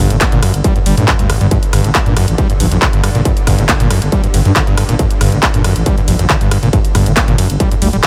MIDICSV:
0, 0, Header, 1, 5, 480
1, 0, Start_track
1, 0, Key_signature, -2, "minor"
1, 0, Tempo, 434783
1, 1671, Time_signature, 4, 2, 24, 8
1, 8908, End_track
2, 0, Start_track
2, 0, Title_t, "Synth drone"
2, 0, Program_c, 0, 95
2, 0, Note_on_c, 0, 43, 78
2, 0, Note_on_c, 0, 50, 82
2, 8908, Note_off_c, 0, 43, 0
2, 8908, Note_off_c, 0, 50, 0
2, 8908, End_track
3, 0, Start_track
3, 0, Title_t, "Acid bass"
3, 0, Program_c, 1, 38
3, 0, Note_on_c, 1, 43, 107
3, 118, Note_on_c, 1, 46, 80
3, 134, Note_off_c, 1, 43, 0
3, 180, Note_off_c, 1, 46, 0
3, 232, Note_on_c, 1, 58, 89
3, 273, Note_off_c, 1, 58, 0
3, 357, Note_on_c, 1, 46, 77
3, 452, Note_off_c, 1, 46, 0
3, 473, Note_on_c, 1, 42, 106
3, 576, Note_off_c, 1, 42, 0
3, 712, Note_on_c, 1, 55, 98
3, 815, Note_off_c, 1, 55, 0
3, 836, Note_on_c, 1, 43, 79
3, 874, Note_off_c, 1, 43, 0
3, 951, Note_on_c, 1, 55, 75
3, 1055, Note_off_c, 1, 55, 0
3, 1078, Note_on_c, 1, 45, 104
3, 1172, Note_off_c, 1, 45, 0
3, 1191, Note_on_c, 1, 43, 83
3, 1260, Note_off_c, 1, 43, 0
3, 1316, Note_on_c, 1, 43, 82
3, 1429, Note_on_c, 1, 31, 77
3, 1446, Note_off_c, 1, 43, 0
3, 1534, Note_off_c, 1, 31, 0
3, 1555, Note_on_c, 1, 43, 77
3, 1619, Note_off_c, 1, 43, 0
3, 1671, Note_on_c, 1, 43, 105
3, 1740, Note_off_c, 1, 43, 0
3, 1910, Note_on_c, 1, 43, 101
3, 2037, Note_on_c, 1, 46, 78
3, 2054, Note_off_c, 1, 43, 0
3, 2100, Note_off_c, 1, 46, 0
3, 2151, Note_on_c, 1, 58, 87
3, 2193, Note_off_c, 1, 58, 0
3, 2278, Note_on_c, 1, 46, 78
3, 2372, Note_off_c, 1, 46, 0
3, 2392, Note_on_c, 1, 42, 106
3, 2496, Note_off_c, 1, 42, 0
3, 2630, Note_on_c, 1, 55, 104
3, 2735, Note_off_c, 1, 55, 0
3, 2758, Note_on_c, 1, 43, 80
3, 2795, Note_off_c, 1, 43, 0
3, 2872, Note_on_c, 1, 43, 78
3, 2941, Note_off_c, 1, 43, 0
3, 2997, Note_on_c, 1, 42, 79
3, 3060, Note_off_c, 1, 42, 0
3, 3112, Note_on_c, 1, 50, 103
3, 3181, Note_off_c, 1, 50, 0
3, 3238, Note_on_c, 1, 43, 105
3, 3332, Note_off_c, 1, 43, 0
3, 3354, Note_on_c, 1, 43, 77
3, 3422, Note_off_c, 1, 43, 0
3, 3479, Note_on_c, 1, 46, 104
3, 3541, Note_off_c, 1, 46, 0
3, 3593, Note_on_c, 1, 43, 99
3, 3661, Note_off_c, 1, 43, 0
3, 3834, Note_on_c, 1, 43, 104
3, 3958, Note_on_c, 1, 46, 79
3, 3975, Note_off_c, 1, 43, 0
3, 4021, Note_off_c, 1, 46, 0
3, 4073, Note_on_c, 1, 58, 86
3, 4114, Note_off_c, 1, 58, 0
3, 4199, Note_on_c, 1, 46, 78
3, 4292, Note_off_c, 1, 46, 0
3, 4312, Note_on_c, 1, 42, 104
3, 4415, Note_off_c, 1, 42, 0
3, 4553, Note_on_c, 1, 55, 103
3, 4656, Note_off_c, 1, 55, 0
3, 4679, Note_on_c, 1, 43, 80
3, 4716, Note_off_c, 1, 43, 0
3, 4794, Note_on_c, 1, 43, 78
3, 4862, Note_off_c, 1, 43, 0
3, 4919, Note_on_c, 1, 42, 78
3, 4981, Note_off_c, 1, 42, 0
3, 5033, Note_on_c, 1, 50, 104
3, 5101, Note_off_c, 1, 50, 0
3, 5160, Note_on_c, 1, 43, 105
3, 5253, Note_off_c, 1, 43, 0
3, 5274, Note_on_c, 1, 43, 76
3, 5342, Note_off_c, 1, 43, 0
3, 5400, Note_on_c, 1, 46, 102
3, 5461, Note_off_c, 1, 46, 0
3, 5514, Note_on_c, 1, 43, 99
3, 5582, Note_off_c, 1, 43, 0
3, 5754, Note_on_c, 1, 43, 103
3, 5879, Note_on_c, 1, 46, 76
3, 5895, Note_off_c, 1, 43, 0
3, 5941, Note_off_c, 1, 46, 0
3, 5993, Note_on_c, 1, 58, 86
3, 6034, Note_off_c, 1, 58, 0
3, 6119, Note_on_c, 1, 46, 79
3, 6212, Note_off_c, 1, 46, 0
3, 6232, Note_on_c, 1, 42, 105
3, 6335, Note_off_c, 1, 42, 0
3, 6473, Note_on_c, 1, 55, 102
3, 6576, Note_off_c, 1, 55, 0
3, 6598, Note_on_c, 1, 43, 80
3, 6635, Note_off_c, 1, 43, 0
3, 6712, Note_on_c, 1, 43, 77
3, 6781, Note_off_c, 1, 43, 0
3, 6838, Note_on_c, 1, 42, 77
3, 6900, Note_off_c, 1, 42, 0
3, 6953, Note_on_c, 1, 50, 104
3, 7021, Note_off_c, 1, 50, 0
3, 7078, Note_on_c, 1, 43, 104
3, 7172, Note_off_c, 1, 43, 0
3, 7192, Note_on_c, 1, 43, 79
3, 7261, Note_off_c, 1, 43, 0
3, 7317, Note_on_c, 1, 46, 103
3, 7380, Note_off_c, 1, 46, 0
3, 7431, Note_on_c, 1, 43, 103
3, 7500, Note_off_c, 1, 43, 0
3, 7672, Note_on_c, 1, 43, 106
3, 7797, Note_on_c, 1, 46, 79
3, 7814, Note_off_c, 1, 43, 0
3, 7860, Note_off_c, 1, 46, 0
3, 7911, Note_on_c, 1, 58, 87
3, 7953, Note_off_c, 1, 58, 0
3, 8037, Note_on_c, 1, 46, 79
3, 8131, Note_off_c, 1, 46, 0
3, 8152, Note_on_c, 1, 42, 106
3, 8255, Note_off_c, 1, 42, 0
3, 8391, Note_on_c, 1, 55, 99
3, 8495, Note_off_c, 1, 55, 0
3, 8517, Note_on_c, 1, 43, 79
3, 8555, Note_off_c, 1, 43, 0
3, 8631, Note_on_c, 1, 55, 78
3, 8701, Note_off_c, 1, 55, 0
3, 8758, Note_on_c, 1, 55, 79
3, 8795, Note_off_c, 1, 55, 0
3, 8872, Note_on_c, 1, 55, 104
3, 8908, Note_off_c, 1, 55, 0
3, 8908, End_track
4, 0, Start_track
4, 0, Title_t, "FM bass"
4, 0, Program_c, 2, 39
4, 117, Note_on_c, 2, 31, 84
4, 198, Note_off_c, 2, 31, 0
4, 356, Note_on_c, 2, 31, 77
4, 438, Note_off_c, 2, 31, 0
4, 596, Note_on_c, 2, 31, 85
4, 678, Note_off_c, 2, 31, 0
4, 951, Note_on_c, 2, 31, 94
4, 1040, Note_off_c, 2, 31, 0
4, 1076, Note_on_c, 2, 43, 84
4, 1158, Note_off_c, 2, 43, 0
4, 1316, Note_on_c, 2, 38, 77
4, 1398, Note_off_c, 2, 38, 0
4, 1556, Note_on_c, 2, 31, 82
4, 1638, Note_off_c, 2, 31, 0
4, 1910, Note_on_c, 2, 31, 93
4, 2000, Note_off_c, 2, 31, 0
4, 2036, Note_on_c, 2, 31, 85
4, 2118, Note_off_c, 2, 31, 0
4, 2276, Note_on_c, 2, 43, 77
4, 2357, Note_off_c, 2, 43, 0
4, 2516, Note_on_c, 2, 33, 84
4, 2598, Note_off_c, 2, 33, 0
4, 2871, Note_on_c, 2, 34, 98
4, 2960, Note_off_c, 2, 34, 0
4, 2997, Note_on_c, 2, 34, 84
4, 3078, Note_off_c, 2, 34, 0
4, 3237, Note_on_c, 2, 31, 80
4, 3318, Note_off_c, 2, 31, 0
4, 3477, Note_on_c, 2, 31, 82
4, 3558, Note_off_c, 2, 31, 0
4, 3831, Note_on_c, 2, 31, 92
4, 3921, Note_off_c, 2, 31, 0
4, 3957, Note_on_c, 2, 31, 82
4, 4038, Note_off_c, 2, 31, 0
4, 4198, Note_on_c, 2, 31, 75
4, 4278, Note_off_c, 2, 31, 0
4, 4438, Note_on_c, 2, 31, 81
4, 4519, Note_off_c, 2, 31, 0
4, 4792, Note_on_c, 2, 31, 96
4, 4881, Note_off_c, 2, 31, 0
4, 4918, Note_on_c, 2, 43, 82
4, 4999, Note_off_c, 2, 43, 0
4, 5159, Note_on_c, 2, 31, 80
4, 5239, Note_off_c, 2, 31, 0
4, 5398, Note_on_c, 2, 31, 84
4, 5479, Note_off_c, 2, 31, 0
4, 5751, Note_on_c, 2, 31, 98
4, 5841, Note_off_c, 2, 31, 0
4, 5879, Note_on_c, 2, 31, 87
4, 5959, Note_off_c, 2, 31, 0
4, 6118, Note_on_c, 2, 43, 77
4, 6199, Note_off_c, 2, 43, 0
4, 6358, Note_on_c, 2, 33, 84
4, 6439, Note_off_c, 2, 33, 0
4, 6712, Note_on_c, 2, 34, 98
4, 6801, Note_off_c, 2, 34, 0
4, 6838, Note_on_c, 2, 34, 86
4, 6918, Note_off_c, 2, 34, 0
4, 7077, Note_on_c, 2, 31, 79
4, 7158, Note_off_c, 2, 31, 0
4, 7316, Note_on_c, 2, 31, 81
4, 7397, Note_off_c, 2, 31, 0
4, 7671, Note_on_c, 2, 31, 93
4, 7760, Note_off_c, 2, 31, 0
4, 7796, Note_on_c, 2, 31, 87
4, 7878, Note_off_c, 2, 31, 0
4, 8036, Note_on_c, 2, 31, 77
4, 8117, Note_off_c, 2, 31, 0
4, 8276, Note_on_c, 2, 31, 85
4, 8358, Note_off_c, 2, 31, 0
4, 8630, Note_on_c, 2, 38, 94
4, 8720, Note_off_c, 2, 38, 0
4, 8756, Note_on_c, 2, 26, 83
4, 8837, Note_off_c, 2, 26, 0
4, 8908, End_track
5, 0, Start_track
5, 0, Title_t, "Drums"
5, 115, Note_on_c, 9, 42, 53
5, 226, Note_off_c, 9, 42, 0
5, 230, Note_on_c, 9, 39, 116
5, 230, Note_on_c, 9, 42, 77
5, 231, Note_on_c, 9, 36, 124
5, 340, Note_off_c, 9, 39, 0
5, 340, Note_off_c, 9, 42, 0
5, 341, Note_off_c, 9, 36, 0
5, 355, Note_on_c, 9, 42, 54
5, 466, Note_off_c, 9, 42, 0
5, 470, Note_on_c, 9, 37, 85
5, 470, Note_on_c, 9, 46, 96
5, 470, Note_on_c, 9, 51, 76
5, 580, Note_off_c, 9, 37, 0
5, 580, Note_off_c, 9, 46, 0
5, 580, Note_off_c, 9, 51, 0
5, 595, Note_on_c, 9, 42, 53
5, 706, Note_off_c, 9, 42, 0
5, 710, Note_on_c, 9, 42, 82
5, 711, Note_on_c, 9, 36, 125
5, 821, Note_off_c, 9, 36, 0
5, 821, Note_off_c, 9, 42, 0
5, 836, Note_on_c, 9, 42, 51
5, 946, Note_off_c, 9, 42, 0
5, 950, Note_on_c, 9, 46, 112
5, 950, Note_on_c, 9, 51, 78
5, 1060, Note_off_c, 9, 46, 0
5, 1060, Note_off_c, 9, 51, 0
5, 1076, Note_on_c, 9, 42, 55
5, 1187, Note_off_c, 9, 42, 0
5, 1190, Note_on_c, 9, 36, 127
5, 1190, Note_on_c, 9, 39, 115
5, 1190, Note_on_c, 9, 42, 83
5, 1301, Note_off_c, 9, 36, 0
5, 1301, Note_off_c, 9, 39, 0
5, 1301, Note_off_c, 9, 42, 0
5, 1316, Note_on_c, 9, 42, 52
5, 1426, Note_off_c, 9, 42, 0
5, 1430, Note_on_c, 9, 37, 99
5, 1430, Note_on_c, 9, 46, 96
5, 1430, Note_on_c, 9, 51, 81
5, 1541, Note_off_c, 9, 37, 0
5, 1541, Note_off_c, 9, 46, 0
5, 1541, Note_off_c, 9, 51, 0
5, 1556, Note_on_c, 9, 42, 55
5, 1666, Note_off_c, 9, 42, 0
5, 1670, Note_on_c, 9, 36, 120
5, 1670, Note_on_c, 9, 42, 77
5, 1781, Note_off_c, 9, 36, 0
5, 1781, Note_off_c, 9, 42, 0
5, 1796, Note_on_c, 9, 42, 51
5, 1907, Note_off_c, 9, 42, 0
5, 1910, Note_on_c, 9, 37, 99
5, 1910, Note_on_c, 9, 46, 110
5, 1910, Note_on_c, 9, 51, 83
5, 2021, Note_off_c, 9, 37, 0
5, 2021, Note_off_c, 9, 46, 0
5, 2021, Note_off_c, 9, 51, 0
5, 2036, Note_on_c, 9, 42, 52
5, 2146, Note_off_c, 9, 42, 0
5, 2150, Note_on_c, 9, 36, 121
5, 2151, Note_on_c, 9, 39, 117
5, 2151, Note_on_c, 9, 42, 76
5, 2261, Note_off_c, 9, 36, 0
5, 2261, Note_off_c, 9, 39, 0
5, 2261, Note_off_c, 9, 42, 0
5, 2277, Note_on_c, 9, 42, 54
5, 2387, Note_off_c, 9, 42, 0
5, 2391, Note_on_c, 9, 37, 90
5, 2391, Note_on_c, 9, 46, 94
5, 2391, Note_on_c, 9, 51, 81
5, 2501, Note_off_c, 9, 37, 0
5, 2501, Note_off_c, 9, 46, 0
5, 2501, Note_off_c, 9, 51, 0
5, 2517, Note_on_c, 9, 42, 51
5, 2627, Note_off_c, 9, 42, 0
5, 2630, Note_on_c, 9, 36, 122
5, 2631, Note_on_c, 9, 42, 79
5, 2741, Note_off_c, 9, 36, 0
5, 2742, Note_off_c, 9, 42, 0
5, 2757, Note_on_c, 9, 42, 49
5, 2867, Note_off_c, 9, 42, 0
5, 2871, Note_on_c, 9, 46, 108
5, 2871, Note_on_c, 9, 51, 80
5, 2982, Note_off_c, 9, 46, 0
5, 2982, Note_off_c, 9, 51, 0
5, 2998, Note_on_c, 9, 42, 52
5, 3108, Note_off_c, 9, 42, 0
5, 3111, Note_on_c, 9, 36, 123
5, 3112, Note_on_c, 9, 39, 119
5, 3112, Note_on_c, 9, 42, 77
5, 3221, Note_off_c, 9, 36, 0
5, 3222, Note_off_c, 9, 39, 0
5, 3222, Note_off_c, 9, 42, 0
5, 3237, Note_on_c, 9, 42, 51
5, 3347, Note_off_c, 9, 42, 0
5, 3351, Note_on_c, 9, 37, 102
5, 3351, Note_on_c, 9, 46, 96
5, 3351, Note_on_c, 9, 51, 79
5, 3462, Note_off_c, 9, 37, 0
5, 3462, Note_off_c, 9, 46, 0
5, 3462, Note_off_c, 9, 51, 0
5, 3478, Note_on_c, 9, 42, 51
5, 3588, Note_off_c, 9, 42, 0
5, 3591, Note_on_c, 9, 36, 119
5, 3592, Note_on_c, 9, 42, 80
5, 3702, Note_off_c, 9, 36, 0
5, 3702, Note_off_c, 9, 42, 0
5, 3718, Note_on_c, 9, 42, 50
5, 3828, Note_off_c, 9, 42, 0
5, 3831, Note_on_c, 9, 36, 61
5, 3831, Note_on_c, 9, 37, 102
5, 3831, Note_on_c, 9, 46, 105
5, 3831, Note_on_c, 9, 51, 84
5, 3942, Note_off_c, 9, 36, 0
5, 3942, Note_off_c, 9, 37, 0
5, 3942, Note_off_c, 9, 46, 0
5, 3942, Note_off_c, 9, 51, 0
5, 3958, Note_on_c, 9, 42, 50
5, 4068, Note_off_c, 9, 42, 0
5, 4071, Note_on_c, 9, 36, 115
5, 4071, Note_on_c, 9, 39, 122
5, 4071, Note_on_c, 9, 42, 76
5, 4181, Note_off_c, 9, 39, 0
5, 4181, Note_off_c, 9, 42, 0
5, 4182, Note_off_c, 9, 36, 0
5, 4197, Note_on_c, 9, 42, 53
5, 4307, Note_off_c, 9, 42, 0
5, 4311, Note_on_c, 9, 37, 89
5, 4311, Note_on_c, 9, 46, 95
5, 4311, Note_on_c, 9, 51, 86
5, 4422, Note_off_c, 9, 37, 0
5, 4422, Note_off_c, 9, 46, 0
5, 4422, Note_off_c, 9, 51, 0
5, 4437, Note_on_c, 9, 42, 51
5, 4547, Note_off_c, 9, 42, 0
5, 4551, Note_on_c, 9, 42, 80
5, 4552, Note_on_c, 9, 36, 112
5, 4661, Note_off_c, 9, 42, 0
5, 4662, Note_off_c, 9, 36, 0
5, 4677, Note_on_c, 9, 42, 51
5, 4787, Note_off_c, 9, 42, 0
5, 4790, Note_on_c, 9, 46, 102
5, 4790, Note_on_c, 9, 51, 83
5, 4901, Note_off_c, 9, 46, 0
5, 4901, Note_off_c, 9, 51, 0
5, 4917, Note_on_c, 9, 42, 52
5, 5028, Note_off_c, 9, 42, 0
5, 5032, Note_on_c, 9, 36, 120
5, 5032, Note_on_c, 9, 39, 124
5, 5032, Note_on_c, 9, 42, 80
5, 5142, Note_off_c, 9, 36, 0
5, 5142, Note_off_c, 9, 39, 0
5, 5142, Note_off_c, 9, 42, 0
5, 5158, Note_on_c, 9, 42, 51
5, 5269, Note_off_c, 9, 42, 0
5, 5271, Note_on_c, 9, 37, 99
5, 5271, Note_on_c, 9, 46, 91
5, 5271, Note_on_c, 9, 51, 86
5, 5382, Note_off_c, 9, 37, 0
5, 5382, Note_off_c, 9, 46, 0
5, 5382, Note_off_c, 9, 51, 0
5, 5398, Note_on_c, 9, 42, 52
5, 5508, Note_off_c, 9, 42, 0
5, 5511, Note_on_c, 9, 42, 79
5, 5512, Note_on_c, 9, 36, 116
5, 5622, Note_off_c, 9, 36, 0
5, 5622, Note_off_c, 9, 42, 0
5, 5636, Note_on_c, 9, 42, 54
5, 5747, Note_off_c, 9, 42, 0
5, 5751, Note_on_c, 9, 37, 97
5, 5751, Note_on_c, 9, 46, 104
5, 5751, Note_on_c, 9, 51, 86
5, 5861, Note_off_c, 9, 37, 0
5, 5861, Note_off_c, 9, 46, 0
5, 5861, Note_off_c, 9, 51, 0
5, 5877, Note_on_c, 9, 42, 52
5, 5987, Note_off_c, 9, 42, 0
5, 5991, Note_on_c, 9, 36, 117
5, 5991, Note_on_c, 9, 39, 127
5, 5991, Note_on_c, 9, 42, 80
5, 6101, Note_off_c, 9, 39, 0
5, 6101, Note_off_c, 9, 42, 0
5, 6102, Note_off_c, 9, 36, 0
5, 6117, Note_on_c, 9, 42, 55
5, 6227, Note_off_c, 9, 42, 0
5, 6231, Note_on_c, 9, 37, 90
5, 6231, Note_on_c, 9, 46, 90
5, 6231, Note_on_c, 9, 51, 86
5, 6342, Note_off_c, 9, 37, 0
5, 6342, Note_off_c, 9, 46, 0
5, 6342, Note_off_c, 9, 51, 0
5, 6357, Note_on_c, 9, 42, 52
5, 6467, Note_off_c, 9, 42, 0
5, 6471, Note_on_c, 9, 36, 116
5, 6471, Note_on_c, 9, 42, 79
5, 6581, Note_off_c, 9, 42, 0
5, 6582, Note_off_c, 9, 36, 0
5, 6597, Note_on_c, 9, 42, 51
5, 6708, Note_off_c, 9, 42, 0
5, 6711, Note_on_c, 9, 46, 100
5, 6711, Note_on_c, 9, 51, 85
5, 6821, Note_off_c, 9, 46, 0
5, 6821, Note_off_c, 9, 51, 0
5, 6836, Note_on_c, 9, 42, 55
5, 6947, Note_off_c, 9, 42, 0
5, 6951, Note_on_c, 9, 36, 116
5, 6951, Note_on_c, 9, 39, 125
5, 6951, Note_on_c, 9, 42, 82
5, 7061, Note_off_c, 9, 39, 0
5, 7061, Note_off_c, 9, 42, 0
5, 7062, Note_off_c, 9, 36, 0
5, 7077, Note_on_c, 9, 42, 52
5, 7187, Note_off_c, 9, 42, 0
5, 7191, Note_on_c, 9, 37, 96
5, 7191, Note_on_c, 9, 46, 92
5, 7191, Note_on_c, 9, 51, 88
5, 7302, Note_off_c, 9, 37, 0
5, 7302, Note_off_c, 9, 46, 0
5, 7302, Note_off_c, 9, 51, 0
5, 7318, Note_on_c, 9, 42, 53
5, 7428, Note_off_c, 9, 42, 0
5, 7431, Note_on_c, 9, 36, 124
5, 7432, Note_on_c, 9, 42, 85
5, 7541, Note_off_c, 9, 36, 0
5, 7542, Note_off_c, 9, 42, 0
5, 7558, Note_on_c, 9, 42, 53
5, 7668, Note_off_c, 9, 42, 0
5, 7671, Note_on_c, 9, 36, 59
5, 7672, Note_on_c, 9, 37, 94
5, 7672, Note_on_c, 9, 46, 103
5, 7672, Note_on_c, 9, 51, 83
5, 7781, Note_off_c, 9, 36, 0
5, 7783, Note_off_c, 9, 37, 0
5, 7783, Note_off_c, 9, 46, 0
5, 7783, Note_off_c, 9, 51, 0
5, 7798, Note_on_c, 9, 42, 55
5, 7908, Note_off_c, 9, 42, 0
5, 7911, Note_on_c, 9, 36, 117
5, 7912, Note_on_c, 9, 39, 126
5, 7912, Note_on_c, 9, 42, 84
5, 8021, Note_off_c, 9, 36, 0
5, 8022, Note_off_c, 9, 39, 0
5, 8022, Note_off_c, 9, 42, 0
5, 8038, Note_on_c, 9, 42, 56
5, 8148, Note_off_c, 9, 42, 0
5, 8151, Note_on_c, 9, 46, 93
5, 8151, Note_on_c, 9, 51, 83
5, 8262, Note_off_c, 9, 46, 0
5, 8262, Note_off_c, 9, 51, 0
5, 8278, Note_on_c, 9, 42, 54
5, 8388, Note_off_c, 9, 42, 0
5, 8391, Note_on_c, 9, 36, 111
5, 8392, Note_on_c, 9, 42, 83
5, 8501, Note_off_c, 9, 36, 0
5, 8502, Note_off_c, 9, 42, 0
5, 8517, Note_on_c, 9, 42, 54
5, 8628, Note_off_c, 9, 42, 0
5, 8631, Note_on_c, 9, 46, 103
5, 8631, Note_on_c, 9, 51, 82
5, 8742, Note_off_c, 9, 46, 0
5, 8742, Note_off_c, 9, 51, 0
5, 8757, Note_on_c, 9, 42, 54
5, 8867, Note_off_c, 9, 42, 0
5, 8871, Note_on_c, 9, 36, 119
5, 8871, Note_on_c, 9, 38, 64
5, 8871, Note_on_c, 9, 39, 127
5, 8871, Note_on_c, 9, 42, 82
5, 8908, Note_off_c, 9, 36, 0
5, 8908, Note_off_c, 9, 38, 0
5, 8908, Note_off_c, 9, 39, 0
5, 8908, Note_off_c, 9, 42, 0
5, 8908, End_track
0, 0, End_of_file